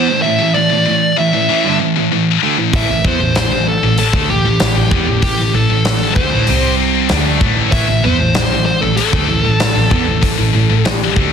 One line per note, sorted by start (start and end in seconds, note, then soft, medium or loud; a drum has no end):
0.00 0.22 C5 medium
0.08 0.23 A2 medium
0.08 0.23 E3 medium
0.22 0.38 A2 medium
0.22 0.38 E3 medium
0.22 0.54 E5 medium
0.39 0.53 A2 medium
0.39 0.53 E3 medium
0.54 0.68 A2 medium
0.54 0.69 E3 medium
0.54 1.18 D5 medium
0.69 0.84 A2 medium
0.69 0.85 E3 medium
0.86 1.11 A2 medium
0.86 1.11 E3 medium
1.17 1.32 A2 medium
1.17 1.32 E3 medium
1.17 1.77 E5 medium
1.33 1.48 A2 medium
1.33 1.49 E3 medium
1.49 1.64 A2 medium
1.49 1.64 E3 loud
1.64 1.79 G2 medium
1.64 1.79 D3 medium
1.80 1.95 A2 medium
1.80 1.95 E3 medium
1.96 2.11 A2 medium
1.96 2.11 E3 medium
2.12 2.37 A2 medium
2.12 2.37 E3 medium
2.43 2.57 D3 medium
2.43 2.58 A3 medium
2.58 2.72 A2 medium
2.58 2.73 E3 medium
2.73 2.88 A1 medium
2.73 2.88 A2 medium
2.73 2.88 E3 loud
2.73 3.04 E5 loud
2.73 kick loud
2.73 open hi-hat soft
2.88 3.03 A1 medium
2.88 3.04 A2 medium
2.88 3.04 E3 medium
3.05 3.19 E2 medium
3.05 3.19 E3 medium
3.05 3.20 B3 medium
3.05 3.36 C5 medium
3.05 kick medium
3.20 3.34 A1 medium
3.20 3.36 A2 medium
3.20 3.36 E3 medium
3.34 3.50 A1 medium
3.34 3.51 A2 medium
3.34 3.52 E3 medium
3.34 3.68 C5 medium
3.34 snare loud
3.34 open hi-hat medium
3.50 3.80 A1 medium
3.50 3.77 A2 medium
3.50 3.77 E3 medium
3.68 3.98 A4 medium
3.82 3.97 A1 medium
3.82 3.98 A2 medium
3.82 3.99 E3 medium
3.98 4.12 A1 soft
3.98 4.28 A4 medium
3.98 muted distorted electric guitar stroke medium
3.98 muted overdriven electric guitar stroke medium
3.98 open hi-hat soft
4.13 4.28 D2 medium
4.13 4.29 D3 medium
4.13 4.29 A3 medium
4.13 kick medium
4.29 4.43 A1 medium
4.29 4.44 A2 medium
4.29 4.45 E3 medium
4.29 5.22 G4 medium
4.44 4.59 A1 medium
4.44 4.60 A2 medium
4.44 4.60 E3 medium
4.60 4.75 A1 medium
4.60 4.74 A2 medium
4.60 4.75 E3 medium
4.60 snare loud
4.60 open hi-hat medium
4.75 4.90 A1 medium
4.75 4.91 A2 medium
4.75 4.91 E3 medium
4.91 5.06 E2 medium
4.91 5.06 E3 medium
4.91 5.07 B3 medium
4.91 kick loud
5.07 5.21 A1 medium
5.07 5.21 A2 medium
5.07 5.22 E3 medium
5.22 5.37 A1 medium
5.22 5.37 A2 medium
5.22 5.37 E3 medium
5.22 5.52 G4 medium
5.22 kick medium
5.22 open hi-hat medium
5.38 5.53 A1 medium
5.38 5.53 A2 medium
5.38 5.54 E3 medium
5.54 5.68 A1 medium
5.54 5.69 A2 medium
5.54 5.69 E3 medium
5.54 6.15 A4 medium
5.69 5.84 A1 medium
5.69 5.84 A2 medium
5.69 5.84 E3 medium
5.85 6.14 A1 medium
5.85 6.10 A2 medium
5.85 6.10 E3 medium
5.85 snare loud
5.85 open hi-hat medium
6.16 6.31 D2 medium
6.16 6.31 D3 medium
6.16 6.31 A3 loud
6.16 6.74 C5 medium
6.16 kick loud
6.32 6.47 A1 medium
6.32 6.48 A2 medium
6.32 6.48 E3 medium
6.47 7.06 C2 medium
6.47 7.09 C3 medium
6.47 7.09 G3 medium
6.47 7.10 C4 medium
6.47 open hi-hat medium
7.09 7.39 D2 medium
7.09 7.40 D3 medium
7.09 7.41 A3 loud
7.09 7.41 D4 medium
7.09 snare loud
7.09 open hi-hat medium
7.41 7.70 A1 medium
7.41 7.71 A2 medium
7.41 7.72 E3 medium
7.41 7.72 A3 medium
7.41 kick loud
7.72 7.87 A1 medium
7.72 7.87 A2 medium
7.72 7.88 E3 loud
7.72 8.04 E5 loud
7.72 kick loud
7.72 open hi-hat medium
7.89 8.03 A1 medium
7.89 8.04 A2 medium
7.89 8.03 E3 medium
8.04 8.19 E2 medium
8.04 8.18 E3 medium
8.04 8.19 B3 loud
8.04 8.64 C5 loud
8.20 8.35 A1 medium
8.20 8.34 A2 medium
8.20 8.35 E3 medium
8.34 8.50 A1 medium
8.34 8.48 A2 medium
8.34 8.51 E3 medium
8.34 snare loud
8.34 open hi-hat medium
8.51 8.80 A1 medium
8.51 8.76 A2 medium
8.51 8.76 E3 medium
8.66 8.81 C5 medium
8.81 8.97 A1 medium
8.81 8.97 A2 medium
8.81 8.98 E3 medium
8.81 8.96 A4 medium
8.97 9.12 A1 soft
8.97 10.92 A4 medium
8.97 muted overdriven electric guitar stroke medium
8.97 muted distorted electric guitar stroke medium
8.97 open hi-hat soft
9.13 9.28 D2 medium
9.13 9.28 D3 medium
9.13 9.28 A3 medium
9.13 kick medium
9.29 9.44 A1 medium
9.29 9.43 A2 medium
9.29 9.44 E3 medium
9.45 9.59 A1 medium
9.45 9.59 A2 medium
9.45 9.59 E3 medium
9.60 9.75 A1 medium
9.60 9.73 A2 medium
9.60 9.74 E3 medium
9.60 snare loud
9.60 open hi-hat medium
9.75 9.90 A1 medium
9.75 9.90 A2 medium
9.75 9.89 E3 medium
9.90 10.06 E2 medium
9.90 10.05 E3 medium
9.90 10.06 B3 medium
9.90 kick loud
10.06 10.22 A1 medium
10.06 10.20 A2 medium
10.06 10.21 E3 medium
10.22 10.37 A1 medium
10.22 10.37 A2 medium
10.22 10.37 E3 medium
10.22 kick medium
10.22 open hi-hat medium
10.38 10.53 A1 medium
10.38 10.52 A2 medium
10.38 10.52 E3 medium
10.53 10.68 A1 medium
10.53 10.68 A2 medium
10.53 10.69 E3 medium
10.70 10.84 A1 medium
10.70 10.84 A2 medium
10.70 10.85 E3 medium
10.85 11.14 A1 medium
10.85 11.10 A2 medium
10.85 11.10 E3 medium
10.85 snare loud
10.85 open hi-hat medium
10.92 11.33 G4 medium
11.16 11.31 D2 medium
11.16 11.31 D3 medium
11.16 11.31 A3 medium
11.16 kick medium